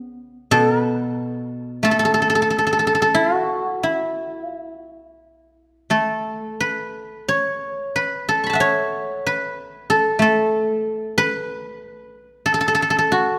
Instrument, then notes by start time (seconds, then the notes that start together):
guzheng
Already playing: B3 C#4 E4 F#4
0.51 B2 A4
0.79 B4
1.83 A3 A4
1.91 A4
1.99 A4
2.05 A4
2.14 A4
2.22 A4
2.30 A4
2.35 A4
2.42 A4
2.50 A4
2.58 A4
2.67 A4
2.73 A4
2.79 A4
2.87 A4
2.95 A4
3.02 A4
3.14 E4
3.33 F#4
3.83 E4
4.43 F4
4.59 E4
4.76 F4
4.92 E4
5.90 A3 A4
6.60 B4
7.28 C#5
7.96 B4
8.29 A4
8.44 B5 C#6
8.50 F#5 A5
8.55 E5
8.60 C#5
9.26 B4
9.90 A4
10.19 A3 A4
11.18 B4
12.46 A4
12.54 A4
12.61 A4
12.68 A4
12.75 A4
12.82 A4
12.90 A4
12.99 A4
13.12 F#4